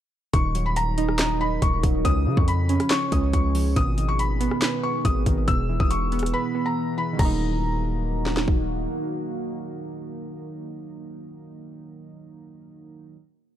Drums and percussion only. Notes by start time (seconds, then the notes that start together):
0.34 kick, closed hi-hat
0.55 closed hi-hat
0.76 closed hi-hat
0.98 closed hi-hat
1.09 cross-stick
1.19 snare, clap, closed hi-hat
1.62 kick, closed hi-hat
1.83 kick, closed hi-hat
2.05 kick, closed hi-hat
2.37 kick
2.48 closed hi-hat
2.69 closed hi-hat
2.80 cross-stick, closed hi-hat
2.91 snare, clap, closed hi-hat
3.12 kick, closed hi-hat
3.33 kick, closed hi-hat
3.55 open hi-hat
3.76 kick, closed hi-hat
3.98 closed hi-hat
4.19 closed hi-hat
4.41 closed hi-hat
4.51 cross-stick
4.62 snare, clap, closed hi-hat
5.05 kick, closed hi-hat
5.26 kick, closed hi-hat
5.48 kick, closed hi-hat
5.80 kick
5.91 closed hi-hat
6.12 closed hi-hat
6.19 cross-stick, closed hi-hat
6.26 closed hi-hat
7.19 kick, crash
8.26 snare
8.37 snare
8.48 kick